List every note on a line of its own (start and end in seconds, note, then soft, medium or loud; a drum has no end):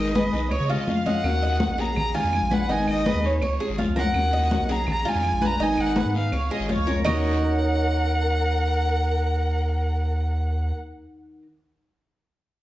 0.00 0.30 G#1 loud
0.00 0.13 D#3 medium
0.00 0.14 G#3 medium
0.00 0.14 B3 medium
0.00 0.14 D#4 medium
0.00 0.15 D#4 medium
0.00 0.15 G#4 medium
0.00 0.14 A#4 medium
0.00 0.70 D#5 loud
0.15 0.32 D#3 medium
0.15 0.32 G#3 medium
0.15 0.33 B3 medium
0.15 0.32 D#4 medium
0.15 0.31 G#4 medium
0.15 0.51 B4 medium
0.15 0.50 B4 medium
0.15 high conga loud
0.15 short guiro medium
0.32 0.50 B1 medium
0.32 0.51 B3 soft
0.32 0.51 D#4 soft
0.32 0.50 G#4 medium
0.32 high conga soft
0.32 short guiro medium
0.50 0.59 C#2 loud
0.50 0.68 C#5 loud
0.50 0.69 C#5 medium
0.50 muted nylon-string guitar stroke medium
0.50 high conga soft
0.50 long guiro medium
0.50 claves medium
0.60 0.77 C#3 medium
0.69 0.87 G#3 soft
0.69 0.87 C#4 soft
0.69 0.87 F4 soft
0.69 1.05 F4 medium
0.69 0.88 D#5 medium
0.69 high conga soft
0.87 1.05 F3 medium
0.87 1.05 G#3 soft
0.87 1.05 C#4 soft
0.87 1.04 F4 medium
0.87 1.24 F5 loud
0.87 high conga medium
0.87 short guiro medium
1.05 1.23 F3 medium
1.05 1.24 G#3 medium
1.05 1.23 C#4 medium
1.05 1.23 F4 medium
1.05 1.23 D#5 medium
1.05 1.82 F#5 loud
1.05 high conga medium
1.05 short guiro medium
1.23 1.41 D#2 loud
1.23 1.58 D#3 medium
1.23 1.59 A#3 medium
1.23 1.60 C#4 medium
1.23 1.60 F#4 medium
1.23 high conga soft
1.23 long guiro medium
1.23 claves medium
1.41 1.68 D#2 medium
1.41 1.78 D#5 medium
1.41 high conga soft
1.59 1.77 D#3 medium
1.59 1.78 A#3 medium
1.59 1.78 C#4 medium
1.59 1.77 F#4 medium
1.59 high conga loud
1.59 short guiro medium
1.69 1.95 A#1 medium
1.78 1.96 A#3 soft
1.78 1.96 C#4 soft
1.78 1.96 F#4 soft
1.78 2.13 G#4 medium
1.78 1.97 A#5 loud
1.78 high conga soft
1.78 short guiro medium
1.96 2.14 A#1 loud
1.96 2.14 A#5 loud
1.96 muted nylon-string guitar stroke medium
1.96 high conga soft
1.96 low conga medium
1.96 long guiro medium
1.96 claves medium
2.14 2.32 G#3 soft
2.14 2.32 D4 soft
2.14 2.32 F4 medium
2.14 2.50 F4 medium
2.14 2.55 G#5 loud
2.14 high conga soft
2.14 low conga medium
2.24 2.41 F2 medium
2.32 2.50 F3 medium
2.32 2.50 G#3 medium
2.32 2.50 D4 medium
2.32 2.49 F4 medium
2.32 high conga soft
2.32 short guiro medium
2.32 claves medium
2.42 2.68 A#1 loud
2.50 2.68 G#3 medium
2.50 2.69 D4 medium
2.50 2.68 F4 medium
2.50 2.69 B4 medium
2.50 2.73 F#5 loud
2.50 high conga medium
2.50 short guiro medium
2.68 2.86 G#1 loud
2.68 3.03 D#3 medium
2.68 3.04 G#3 medium
2.68 3.04 B3 medium
2.68 3.04 D#4 medium
2.68 3.05 D#4 medium
2.68 3.05 G#4 medium
2.68 2.89 G#5 loud
2.68 high conga soft
2.68 long guiro medium
2.87 3.13 G#1 medium
2.87 3.27 D#5 loud
2.87 high conga soft
2.87 claves medium
3.05 3.23 D#3 medium
3.05 3.23 G#3 medium
3.05 3.23 B3 medium
3.05 3.23 D#4 medium
3.05 3.22 G#4 medium
3.05 3.41 B4 medium
3.05 high conga loud
3.05 short guiro medium
3.14 3.40 D#2 loud
3.23 3.42 B3 soft
3.23 3.41 D#4 soft
3.23 3.41 G#4 medium
3.23 3.61 C#5 medium
3.23 high conga soft
3.23 short guiro medium
3.42 3.59 C#2 loud
3.42 3.60 C#5 medium
3.42 muted nylon-string guitar stroke medium
3.42 high conga soft
3.42 long guiro medium
3.42 claves medium
3.60 3.77 G#3 soft
3.60 3.77 C#4 soft
3.60 3.77 F4 soft
3.60 3.78 G#4 medium
3.60 high conga soft
3.69 3.87 G#1 medium
3.77 3.95 F3 soft
3.77 3.96 G#3 medium
3.77 3.95 C#4 soft
3.77 3.96 F4 medium
3.77 3.95 F4 medium
3.77 high conga medium
3.77 short guiro medium
3.87 4.13 C#2 loud
3.96 4.14 F3 medium
3.96 4.14 G#3 medium
3.96 4.14 C#4 medium
3.96 4.14 F4 medium
3.96 4.31 A#4 medium
3.96 4.73 F#5 loud
3.96 high conga medium
3.96 short guiro medium
4.14 4.32 D#2 loud
4.14 4.49 D#3 medium
4.14 4.50 A#3 medium
4.14 4.51 C#4 medium
4.14 4.51 F#4 medium
4.14 high conga soft
4.14 long guiro medium
4.14 claves medium
4.32 4.58 D#2 loud
4.32 4.68 D#5 medium
4.32 high conga soft
4.50 4.68 D#3 medium
4.50 4.69 A#3 medium
4.50 4.68 C#4 medium
4.50 4.67 F#4 medium
4.50 high conga loud
4.50 short guiro medium
4.60 4.86 B1 medium
4.69 4.87 A#3 soft
4.69 4.87 C#4 soft
4.69 4.86 F#4 soft
4.69 5.04 G#4 medium
4.69 4.88 A#5 loud
4.69 high conga soft
4.69 short guiro medium
4.87 5.05 A#1 loud
4.87 5.10 A#5 loud
4.87 muted nylon-string guitar stroke medium
4.87 high conga soft
4.87 low conga medium
4.87 long guiro medium
4.87 claves medium
5.05 5.22 G#3 soft
5.05 5.23 D4 soft
5.05 5.23 F4 medium
5.05 5.41 F4 medium
5.05 5.47 G#5 loud
5.05 high conga soft
5.15 5.32 F2 medium
5.23 5.41 F3 soft
5.23 5.41 G#3 medium
5.23 5.41 D4 medium
5.23 5.40 F4 medium
5.23 high conga soft
5.23 short guiro medium
5.23 claves medium
5.33 5.59 A#1 loud
5.41 5.58 G#3 medium
5.41 5.59 D4 medium
5.41 5.59 F4 medium
5.41 5.60 B4 medium
5.41 high conga medium
5.41 short guiro medium
5.46 5.64 A#5 loud
5.59 5.77 G#1 medium
5.59 5.95 D#3 medium
5.59 5.95 G#3 medium
5.59 5.96 B3 medium
5.59 5.95 D#4 medium
5.59 5.96 D#4 medium
5.59 5.96 G#4 medium
5.59 5.82 G#5 loud
5.59 high conga soft
5.59 long guiro medium
5.78 6.04 G#1 medium
5.78 6.16 F#5 loud
5.78 high conga soft
5.78 claves medium
5.96 6.14 D#3 medium
5.96 6.14 G#3 medium
5.96 6.14 B3 medium
5.96 6.14 D#4 medium
5.96 6.13 G#4 medium
5.96 6.32 B4 medium
5.96 high conga loud
5.96 short guiro medium
6.05 6.31 G#2 medium
6.14 6.32 B3 soft
6.14 6.32 D#4 soft
6.14 6.32 G#4 soft
6.14 6.50 F5 medium
6.14 high conga soft
6.14 short guiro medium
6.32 6.50 C#2 loud
6.32 6.50 C#5 medium
6.32 muted nylon-string guitar stroke medium
6.32 high conga soft
6.32 long guiro medium
6.32 claves medium
6.50 6.68 G#3 soft
6.50 6.69 C#4 medium
6.50 6.68 F4 medium
6.50 6.69 G#4 medium
6.50 6.68 D#5 medium
6.50 high conga soft
6.60 6.77 G#1 medium
6.69 6.86 F3 medium
6.69 6.87 G#3 soft
6.69 6.86 C#4 medium
6.69 6.87 F4 medium
6.69 6.86 F4 medium
6.69 7.03 C#5 loud
6.69 high conga medium
6.69 short guiro medium
6.78 7.04 C#2 loud
6.87 7.04 F3 medium
6.87 7.05 G#3 medium
6.87 7.05 C#4 medium
6.87 7.05 F4 medium
6.87 7.04 A#4 medium
6.87 high conga medium
6.87 short guiro medium
7.04 10.72 D#2 loud
7.04 11.46 D#3 medium
7.04 11.46 A#3 medium
7.04 11.47 C#4 medium
7.04 11.42 D#4 loud
7.04 11.47 F#4 medium
7.04 11.42 A#4 medium
7.04 10.73 A#4 medium
7.04 11.43 C#5 loud
7.04 10.73 F#5 loud
7.04 low conga loud
7.04 long guiro loud
7.04 claves medium